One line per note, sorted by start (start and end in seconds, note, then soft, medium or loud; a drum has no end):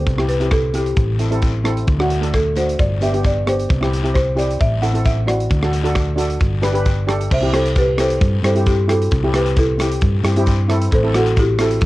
0.00 0.30 C5 medium
0.07 0.93 C2 medium
0.07 kick loud
0.07 closed hi-hat medium
0.07 long guiro medium
0.18 0.31 C4 medium
0.18 0.32 E4 medium
0.18 0.32 G4 medium
0.18 cross-stick medium
0.29 0.39 B4 medium
0.29 closed hi-hat medium
0.40 0.61 C4 medium
0.40 0.61 E4 medium
0.40 0.62 G4 medium
0.40 closed hi-hat medium
0.51 0.76 A4 medium
0.51 kick medium
0.51 cross-stick medium
0.51 closed hi-hat medium
0.51 short guiro medium
0.74 0.97 C4 medium
0.74 0.97 E4 medium
0.74 0.97 G4 medium
0.74 1.85 G4 medium
0.74 closed hi-hat medium
0.74 short guiro medium
0.86 closed hi-hat medium
0.97 1.84 A1 medium
0.97 kick loud
0.97 closed hi-hat medium
0.97 long guiro medium
1.19 1.27 C4 medium
1.19 1.27 E4 medium
1.19 1.27 A4 medium
1.19 closed hi-hat medium
1.19 short guiro medium
1.31 1.52 C4 medium
1.31 1.52 E4 medium
1.31 1.52 A4 medium
1.31 closed hi-hat medium
1.42 kick medium
1.42 closed hi-hat medium
1.42 short guiro medium
1.64 1.85 C4 medium
1.64 1.85 E4 medium
1.64 1.86 A4 loud
1.64 cross-stick medium
1.64 closed hi-hat medium
1.77 closed hi-hat medium
1.87 2.74 D2 medium
1.87 kick loud
1.87 closed hi-hat medium
1.87 long guiro medium
1.99 2.12 A3 medium
1.99 2.13 D4 medium
1.99 2.13 F#4 loud
1.99 cross-stick medium
2.10 closed hi-hat medium
2.20 2.42 A3 medium
2.20 2.42 D4 medium
2.20 2.43 A4 medium
2.20 closed hi-hat medium
2.33 2.44 A4 medium
2.33 kick medium
2.33 cross-stick medium
2.33 closed hi-hat medium
2.33 short guiro medium
2.56 2.79 A3 medium
2.56 2.79 D4 medium
2.56 2.79 F#4 medium
2.56 2.80 C5 medium
2.56 closed hi-hat medium
2.56 short guiro medium
2.69 closed hi-hat medium
2.79 3.65 G1 medium
2.79 3.02 D5 loud
2.79 kick loud
2.79 closed hi-hat medium
2.79 long guiro medium
3.01 3.08 B3 medium
3.01 3.09 D4 medium
3.01 3.09 G4 medium
3.01 3.23 E5 loud
3.01 closed hi-hat medium
3.01 short guiro medium
3.12 3.33 B3 medium
3.12 3.34 D4 medium
3.12 3.34 G4 medium
3.12 closed hi-hat medium
3.23 3.46 D5 loud
3.23 kick medium
3.23 closed hi-hat medium
3.23 short guiro medium
3.46 3.67 B3 medium
3.46 3.67 D4 medium
3.46 3.68 G4 medium
3.46 3.90 C5 medium
3.46 cross-stick medium
3.46 closed hi-hat medium
3.59 closed hi-hat medium
3.69 4.56 C2 loud
3.69 kick loud
3.69 closed hi-hat medium
3.69 long guiro medium
3.81 3.94 C4 medium
3.81 3.95 E4 medium
3.81 3.95 G4 medium
3.81 cross-stick medium
3.93 closed hi-hat medium
4.03 4.24 C4 medium
4.03 4.24 E4 medium
4.03 4.24 G4 medium
4.03 closed hi-hat medium
4.14 4.38 C5 medium
4.14 kick medium
4.14 cross-stick medium
4.14 closed hi-hat medium
4.14 short guiro medium
4.35 4.59 C4 medium
4.35 4.59 E4 medium
4.35 4.59 G4 medium
4.35 4.59 D5 medium
4.35 closed hi-hat medium
4.35 short guiro medium
4.50 closed hi-hat medium
4.60 5.47 A1 medium
4.60 4.81 E5 medium
4.60 kick loud
4.60 closed hi-hat medium
4.60 long guiro medium
4.81 4.89 C4 medium
4.81 4.90 E4 medium
4.81 4.90 A4 medium
4.81 5.06 F#5 loud
4.81 closed hi-hat medium
4.81 short guiro medium
4.93 5.14 C4 medium
4.93 5.15 E4 medium
4.93 5.15 A4 medium
4.93 closed hi-hat medium
5.05 5.26 E5 medium
5.05 kick medium
5.05 closed hi-hat medium
5.05 short guiro medium
5.26 5.47 C4 medium
5.26 5.48 E4 medium
5.26 5.48 F#4 medium
5.26 5.70 D5 medium
5.26 cross-stick medium
5.26 closed hi-hat medium
5.40 closed hi-hat medium
5.50 6.37 D2 loud
5.50 kick loud
5.50 closed hi-hat medium
5.50 long guiro medium
5.62 5.75 D4 medium
5.62 5.76 F#4 medium
5.62 5.76 A4 medium
5.62 cross-stick medium
5.73 closed hi-hat medium
5.83 6.04 D4 medium
5.83 6.05 F#4 medium
5.83 6.05 A4 loud
5.83 closed hi-hat medium
5.95 kick medium
5.95 cross-stick medium
5.95 closed hi-hat medium
5.95 short guiro medium
6.16 6.40 D4 medium
6.16 6.40 F#4 medium
6.16 6.41 A4 medium
6.16 closed hi-hat medium
6.16 short guiro medium
6.30 closed hi-hat medium
6.40 7.27 G1 loud
6.40 kick loud
6.40 closed hi-hat medium
6.40 long guiro medium
6.62 6.70 D4 medium
6.62 6.70 G4 medium
6.62 6.70 B4 loud
6.62 cross-stick medium
6.62 closed hi-hat medium
6.62 short guiro medium
6.73 6.94 D4 medium
6.73 6.95 G4 medium
6.73 6.95 B4 loud
6.73 closed hi-hat medium
6.85 kick medium
6.85 closed hi-hat medium
6.85 short guiro medium
7.07 7.28 D4 medium
7.07 7.29 G4 medium
7.07 7.29 A4 loud
7.07 cross-stick medium
7.07 closed hi-hat medium
7.21 closed hi-hat medium
7.30 8.17 C2 loud
7.30 7.53 C5 medium
7.30 7.56 E5 loud
7.30 kick loud
7.30 crash loud
7.30 long guiro medium
7.41 7.49 C4 medium
7.41 7.49 E4 medium
7.41 7.49 G4 medium
7.52 7.80 C4 medium
7.52 7.81 E4 medium
7.52 7.81 G4 medium
7.52 7.75 A4 medium
7.52 7.77 C5 medium
7.52 cross-stick medium
7.52 closed hi-hat medium
7.66 closed hi-hat medium
7.76 7.98 G4 medium
7.76 8.01 B4 loud
7.76 kick medium
7.76 closed hi-hat medium
7.76 short guiro medium
7.98 8.26 C4 medium
7.98 8.26 E4 medium
7.98 8.27 G4 medium
7.98 8.41 A4 medium
7.98 8.44 C5 loud
7.98 cross-stick medium
7.98 closed hi-hat medium
7.98 short guiro medium
8.10 closed hi-hat medium
8.21 8.42 G2 medium
8.21 kick loud
8.21 closed hi-hat medium
8.21 long guiro medium
8.43 9.07 G2 medium
8.43 8.51 C4 medium
8.43 8.51 E4 medium
8.43 8.52 G4 medium
8.43 8.66 A4 medium
8.43 8.68 C5 loud
8.43 cross-stick medium
8.43 closed hi-hat medium
8.43 short guiro medium
8.55 8.76 C4 medium
8.55 8.76 E4 medium
8.55 8.76 G4 medium
8.55 closed hi-hat medium
8.66 8.88 E4 medium
8.66 8.90 G4 medium
8.66 kick medium
8.66 closed hi-hat medium
8.66 short guiro medium
8.88 9.09 C4 medium
8.88 9.09 E4 medium
8.88 9.32 F#4 medium
8.88 9.09 G4 medium
8.88 9.31 A4 medium
8.88 cross-stick medium
8.88 closed hi-hat medium
9.02 closed hi-hat medium
9.11 9.98 C2 loud
9.11 kick loud
9.11 closed hi-hat medium
9.11 long guiro medium
9.23 9.30 C4 medium
9.23 9.30 E4 medium
9.23 9.30 G4 medium
9.33 9.61 C4 medium
9.33 9.62 E4 medium
9.33 9.62 G4 medium
9.33 9.56 G4 medium
9.33 9.58 B4 medium
9.33 cross-stick medium
9.33 closed hi-hat medium
9.46 closed hi-hat medium
9.56 9.79 E4 medium
9.56 9.79 A4 medium
9.56 kick medium
9.56 closed hi-hat medium
9.56 short guiro medium
9.78 10.06 C4 medium
9.78 10.07 E4 medium
9.78 10.44 E4 medium
9.78 10.07 G4 medium
9.78 10.43 G4 medium
9.78 cross-stick medium
9.78 closed hi-hat medium
9.78 short guiro medium
9.92 closed hi-hat medium
10.01 10.22 G2 loud
10.01 kick loud
10.01 closed hi-hat medium
10.01 long guiro medium
10.24 10.87 G2 loud
10.24 10.31 C4 medium
10.24 10.31 E4 medium
10.24 10.32 G4 medium
10.24 cross-stick medium
10.24 closed hi-hat medium
10.24 short guiro medium
10.36 10.56 C4 medium
10.36 10.57 E4 medium
10.36 10.57 G4 loud
10.36 closed hi-hat medium
10.46 kick medium
10.46 closed hi-hat medium
10.46 short guiro medium
10.68 10.89 C4 medium
10.68 10.90 E4 medium
10.68 10.90 A4 loud
10.68 cross-stick medium
10.68 closed hi-hat medium
10.82 closed hi-hat medium
10.91 11.78 A1 loud
10.91 11.13 A4 medium
10.91 11.14 C5 loud
10.91 kick loud
10.91 closed hi-hat medium
10.91 long guiro loud
11.03 11.10 C4 medium
11.03 11.10 E4 medium
11.03 11.10 A4 medium
11.14 11.41 C4 medium
11.14 11.41 E4 medium
11.14 11.42 F#4 medium
11.14 11.36 F#4 medium
11.14 11.37 A4 medium
11.14 cross-stick medium
11.14 closed hi-hat medium
11.26 closed hi-hat medium
11.36 11.59 E4 medium
11.36 11.61 G4 loud
11.36 kick medium
11.36 closed hi-hat medium
11.36 short guiro medium
11.58 11.86 C4 medium
11.58 11.86 E4 medium
11.58 11.86 F#4 medium
11.58 11.86 A4 medium
11.58 11.86 A4 loud
11.58 cross-stick medium
11.58 closed hi-hat medium
11.58 short guiro medium
11.71 closed hi-hat medium
11.80 11.86 E2 loud
11.80 kick loud
11.80 closed hi-hat medium
11.80 long guiro medium